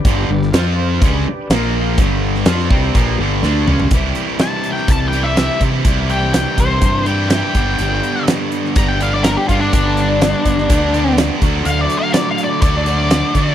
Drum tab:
HH |x---x---x---x---|x---x---x-------|x-x-x-x-x-x-x-x-|x-x-x-x-x-x-x-x-|
SD |---oo-------o---|---ooo------o---|----o--o----o---|----o-------o---|
T2 |----------------|--------------o-|----------------|----------------|
FT |----------------|---------------o|----------------|----------------|
BD |o-------o-------|o-----o-o-------|o-------o-----o-|o-----o-o-----o-|

HH |x-x-x-x-x-x-x-x-|x-x-x-x-x-x-x-x-|x-x-x-x-x-x-x-x-|
SD |----o--o----o---|----o--o----o---|----o-------o---|
T2 |----------------|----------------|----------------|
FT |----------------|----------------|----------------|
BD |--------o-----o-|o-----o-o-----o-|--------o-----o-|